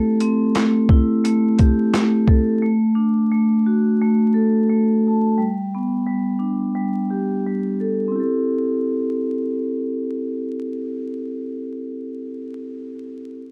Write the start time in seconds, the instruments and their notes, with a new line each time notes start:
Already playing: vibraphone A3 E4 G4 A4
0.20 vibraphone C4, closed hi-hat
0.55 vibraphone A3, snare, clap, closed hi-hat
0.89 vibraphone E4, kick
1.25 vibraphone A3, closed hi-hat
1.58 vibraphone G4, kick, closed hi-hat
1.94 vibraphone A3, snare, clap, closed hi-hat
2.27 vibraphone A4, kick
2.62 vibraphone A3
2.95 vibraphone D4
3.32 vibraphone A3
3.66 vibraphone F#4
4.01 vibraphone A3
4.34 vibraphone A4
4.70 vibraphone A3
5.07 vibraphone A5
5.38 vibraphone G3
5.75 vibraphone B3
6.06 vibraphone G3
6.39 vibraphone D4
6.75 vibraphone G3
7.11 vibraphone G4
7.47 vibraphone G3
7.80 vibraphone A4
8.08 vibraphone C4 E4
8.16 vibraphone G4
8.20 vibraphone A4